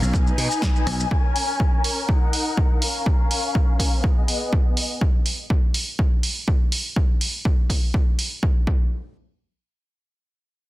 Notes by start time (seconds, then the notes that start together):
Already playing: C#4 A#4 F5
0.01 B1, tambourine, shaker
0.13 D#4 B4 G#5, kick, tambourine, shaker
0.26 tambourine, shaker
0.38 B2, open hi-hat
0.50 tambourine, shaker
0.62 kick, snare, shaker
0.75 tambourine, shaker
0.86 B1, cross-stick, open hi-hat
0.99 tambourine, shaker
1.11 C#4 A#4, kick
1.36 open hi-hat
1.60 kick
1.84 open hi-hat
2.09 D#4 F#5, kick
2.33 open hi-hat
2.57 kick
2.82 C#4 F5, open hi-hat
3.06 kick
3.31 open hi-hat
3.55 kick
3.79 kick, open hi-hat
4.04 B3 G#4 D#5, kick
4.28 open hi-hat
4.53 kick
4.77 open hi-hat
5.01 kick
5.26 open hi-hat
5.50 kick
5.74 open hi-hat
5.99 kick
6.23 open hi-hat
6.48 kick
6.72 open hi-hat
6.96 kick
7.21 open hi-hat
7.45 kick
7.70 kick, open hi-hat
7.94 kick
8.19 open hi-hat
8.43 kick
8.67 kick